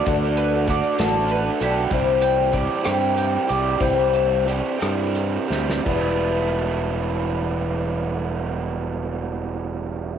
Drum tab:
CC |------------|------------|------------|x-----------|
HH |x-x-x-x-x-x-|x-x-x-x-x-x-|x-x-x-x-x---|------------|
SD |------o-----|------r-----|------r---oo|------------|
BD |o---o-------|o---o-------|o-----------|o-----------|

CC |------------|
HH |------------|
SD |------------|
BD |------------|